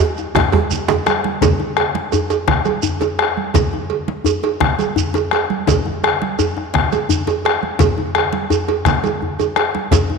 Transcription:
0.01 djembe slap soft
0.17 djembe tone medium
0.17 shekere soft
0.35 bombo rim loud
0.35 bombo low loud
0.35 djembe slap medium
0.35 djembe tone loud
0.35 high conga soft
0.35 low conga medium
0.35 djembe bass medium
0.52 bombo rim soft
0.52 cowbell medium
0.52 djembe slap soft
0.52 djembe tone loud
0.52 high conga medium
0.71 bombo rim soft
0.71 low conga soft
0.71 djembe bass soft
0.71 shekere medium
0.88 bombo rim soft
0.88 cowbell medium
0.88 djembe slap loud
0.88 low conga medium
0.88 djembe bass medium
0.88 shekere soft
1.06 bombo rim loud
1.06 cowbell medium
1.06 djembe slap medium
1.06 high conga medium
1.06 shekere soft
1.24 bombo rim soft
1.24 djembe slap medium
1.24 high conga medium
1.41 bombo low loud
1.41 cowbell medium
1.41 djembe slap medium
1.41 djembe bass medium
1.41 low conga medium
1.41 shekere medium
1.60 djembe tone medium
1.77 bombo rim loud
1.77 cowbell medium
1.77 high conga soft
1.95 djembe slap medium
1.95 high conga medium
2.12 cowbell medium
2.12 djembe bass medium
2.12 shekere medium
2.30 bombo rim soft
2.30 cowbell medium
2.30 djembe tone medium
2.30 shekere soft
2.48 bombo rim loud
2.48 bombo low loud
2.48 djembe slap medium
2.48 low conga medium
2.65 bombo rim soft
2.65 cowbell soft
2.65 high conga medium
2.65 shekere soft
2.82 djembe bass medium
2.82 shekere medium
3.01 cowbell soft
3.01 djembe slap medium
3.01 djembe tone medium
3.01 shekere soft
3.19 bombo rim loud
3.19 cowbell soft
3.19 high conga soft
3.37 djembe slap soft
3.37 high conga medium
3.54 bombo low loud
3.54 cowbell medium
3.54 djembe slap medium
3.54 low conga medium
3.54 djembe bass medium
3.54 shekere medium
3.72 high conga soft
3.72 djembe tone medium
3.90 cowbell soft
3.90 high conga soft
4.08 djembe slap medium
4.08 high conga medium
4.24 cowbell soft
4.24 djembe bass medium
4.24 shekere medium
4.43 bombo rim soft
4.43 cowbell medium
4.43 djembe tone medium
4.60 bombo rim loud
4.60 bombo low loud
4.60 djembe slap medium
4.60 low conga medium
4.79 bombo rim soft
4.79 cowbell soft
4.79 high conga medium
4.79 shekere soft
4.96 djembe bass medium
4.96 shekere medium
5.14 cowbell medium
5.14 djembe slap medium
5.14 djembe tone medium
5.14 shekere soft
5.31 bombo rim loud
5.31 cowbell medium
5.31 high conga soft
5.50 djembe slap soft
5.50 high conga medium
5.67 bombo low loud
5.67 cowbell medium
5.67 djembe slap medium
5.67 djembe bass medium
5.67 low conga medium
5.67 shekere medium
5.86 djembe tone medium
5.86 high conga soft
6.03 bombo rim loud
6.03 cowbell medium
6.03 high conga soft
6.22 djembe slap medium
6.22 high conga medium
6.39 cowbell soft
6.39 djembe bass medium
6.39 shekere medium
6.57 bombo rim soft
6.57 djembe tone medium
6.74 bombo rim loud
6.74 bombo low loud
6.74 djembe slap medium
6.74 low conga medium
6.92 bombo rim soft
6.92 cowbell medium
6.92 high conga medium
6.92 shekere soft
7.09 djembe bass medium
7.09 shekere medium
7.27 cowbell medium
7.27 djembe slap medium
7.27 djembe tone medium
7.27 shekere soft
7.45 bombo rim loud
7.45 cowbell medium
7.45 high conga soft
7.63 djembe slap soft
7.63 high conga soft
7.79 bombo low loud
7.79 cowbell medium
7.79 djembe slap loud
7.79 high conga soft
7.79 djembe bass medium
7.79 low conga medium
7.79 shekere medium
7.98 djembe tone medium
7.98 high conga soft
8.15 bombo rim loud
8.15 cowbell medium
8.15 high conga soft
8.33 djembe slap medium
8.33 high conga medium
8.50 bombo rim soft
8.50 cowbell medium
8.50 djembe bass medium
8.50 shekere medium
8.68 bombo rim soft
8.68 cowbell medium
8.68 djembe slap soft
8.68 djembe tone medium
8.85 bombo rim loud
8.85 bombo low loud
8.85 djembe slap medium
8.85 low conga medium
8.85 shekere soft
9.03 bombo rim soft
9.03 cowbell medium
9.03 high conga medium
9.03 djembe bass soft
9.03 shekere soft
9.21 bombo rim soft
9.21 high conga soft
9.21 djembe bass medium
9.39 cowbell medium
9.39 high conga soft
9.39 djembe bass medium
9.39 shekere soft
9.56 bombo rim loud
9.56 cowbell medium
9.56 djembe slap medium
9.56 high conga soft
9.75 djembe slap medium
9.75 high conga soft
9.91 bombo low loud
9.91 cowbell medium
9.91 djembe slap medium
9.91 low conga medium
9.91 djembe bass medium
9.91 shekere medium
10.10 djembe tone medium
10.10 high conga soft

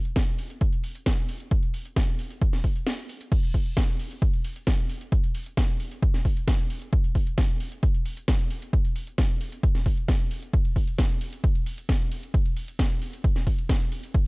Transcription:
0.05 closed hi-hat medium
0.16 kick loud
0.16 snare loud
0.16 closed hi-hat medium
0.27 closed hi-hat soft
0.38 open hi-hat medium
0.50 closed hi-hat medium
0.61 kick loud
0.61 closed hi-hat medium
0.73 closed hi-hat medium
0.84 open hi-hat loud
0.95 closed hi-hat medium
1.06 kick loud
1.06 snare loud
1.06 closed hi-hat medium
1.18 closed hi-hat medium
1.29 open hi-hat medium
1.40 closed hi-hat medium
1.51 kick loud
1.51 closed hi-hat medium
1.63 closed hi-hat medium
1.74 open hi-hat loud
1.85 closed hi-hat medium
1.96 kick loud
1.96 snare loud
1.96 closed hi-hat medium
2.08 closed hi-hat medium
2.19 open hi-hat medium
2.31 closed hi-hat medium
2.42 kick loud
2.42 closed hi-hat medium
2.53 snare soft
2.53 closed hi-hat medium
2.64 kick medium
2.64 open hi-hat loud
2.76 closed hi-hat medium
2.87 snare loud
2.87 closed hi-hat medium
2.98 closed hi-hat medium
3.09 open hi-hat medium
3.21 closed hi-hat medium
3.32 kick loud
3.32 closed hi-hat medium
3.32 crash loud
3.43 closed hi-hat medium
3.54 kick medium
3.54 open hi-hat loud
3.66 closed hi-hat medium
3.77 kick loud
3.77 snare loud
3.77 closed hi-hat loud
3.89 closed hi-hat medium
4.00 open hi-hat medium
4.11 closed hi-hat medium
4.22 kick loud
4.22 closed hi-hat loud
4.34 closed hi-hat medium
4.45 open hi-hat loud
4.56 closed hi-hat medium
4.67 kick loud
4.67 snare loud
4.67 closed hi-hat loud
4.79 closed hi-hat medium
4.90 open hi-hat medium
5.01 closed hi-hat medium
5.12 kick loud
5.12 closed hi-hat loud
5.24 closed hi-hat medium
5.35 open hi-hat loud
5.46 closed hi-hat medium
5.57 kick loud
5.57 snare loud
5.57 closed hi-hat loud
5.69 closed hi-hat medium
5.80 open hi-hat loud
5.92 closed hi-hat medium
6.02 kick loud
6.02 closed hi-hat loud
6.14 snare soft
6.14 closed hi-hat medium
6.25 kick medium
6.25 open hi-hat loud
6.37 closed hi-hat medium
6.48 kick loud
6.48 snare loud
6.48 closed hi-hat loud
6.59 closed hi-hat medium
6.70 open hi-hat loud
6.82 closed hi-hat medium
6.93 kick loud
6.93 closed hi-hat medium
7.04 closed hi-hat medium
7.15 kick medium
7.15 open hi-hat loud
7.27 closed hi-hat medium
7.38 kick loud
7.38 snare loud
7.38 closed hi-hat loud
7.49 closed hi-hat medium
7.60 open hi-hat loud
7.72 closed hi-hat medium
7.83 kick loud
7.83 closed hi-hat loud
7.94 closed hi-hat medium
8.05 open hi-hat loud
8.17 closed hi-hat medium
8.28 kick loud
8.28 snare loud
8.28 closed hi-hat loud
8.40 closed hi-hat medium
8.50 open hi-hat loud
8.62 closed hi-hat medium
8.73 kick loud
8.73 closed hi-hat medium
8.85 closed hi-hat medium
8.96 open hi-hat loud
9.07 closed hi-hat medium
9.18 kick loud
9.18 snare loud
9.18 closed hi-hat medium
9.30 closed hi-hat soft
9.41 open hi-hat medium
9.52 closed hi-hat medium
9.63 kick loud
9.63 closed hi-hat medium
9.75 snare soft
9.75 closed hi-hat medium
9.86 kick medium
9.86 open hi-hat loud
9.97 closed hi-hat medium
10.08 kick loud
10.08 snare loud
10.08 closed hi-hat medium
10.20 closed hi-hat medium
10.31 open hi-hat loud
10.43 closed hi-hat medium
10.54 kick loud
10.54 closed hi-hat medium
10.54 ride medium
10.65 closed hi-hat soft
10.65 ride medium
10.76 kick medium
10.76 open hi-hat loud
10.76 ride medium
10.88 closed hi-hat medium
10.88 ride medium
10.99 kick loud
10.99 snare loud
10.99 closed hi-hat medium
10.99 ride medium
11.10 closed hi-hat soft
11.10 ride medium
11.21 open hi-hat medium
11.21 ride medium
11.33 closed hi-hat medium
11.33 ride medium
11.44 kick loud
11.44 closed hi-hat medium
11.44 ride medium
11.55 closed hi-hat medium
11.55 ride medium
11.66 open hi-hat loud
11.66 ride medium
11.78 closed hi-hat medium
11.78 ride medium
11.89 kick loud
11.89 snare loud
11.89 closed hi-hat medium
11.89 ride medium
12.01 closed hi-hat soft
12.01 ride medium
12.12 open hi-hat medium
12.12 ride medium
12.23 closed hi-hat medium
12.23 ride medium
12.34 kick loud
12.34 closed hi-hat medium
12.34 ride medium
12.46 closed hi-hat medium
12.46 ride medium
12.57 open hi-hat loud
12.57 ride medium
12.68 closed hi-hat medium
12.68 ride medium
12.79 kick loud
12.79 snare loud
12.79 closed hi-hat medium
12.79 ride medium
12.91 closed hi-hat soft
12.91 ride medium
13.02 open hi-hat medium
13.02 ride medium
13.13 closed hi-hat medium
13.13 ride medium
13.24 kick loud
13.24 closed hi-hat medium
13.24 ride medium
13.36 snare soft
13.36 closed hi-hat soft
13.36 ride medium
13.47 kick medium
13.47 open hi-hat loud
13.47 ride medium
13.59 closed hi-hat medium
13.59 ride medium
13.69 kick loud
13.69 snare loud
13.69 closed hi-hat medium
13.69 ride medium
13.81 closed hi-hat soft
13.81 ride medium
13.92 open hi-hat medium
13.92 ride medium
14.03 closed hi-hat medium
14.03 ride medium
14.14 kick loud
14.14 closed hi-hat medium
14.14 ride medium

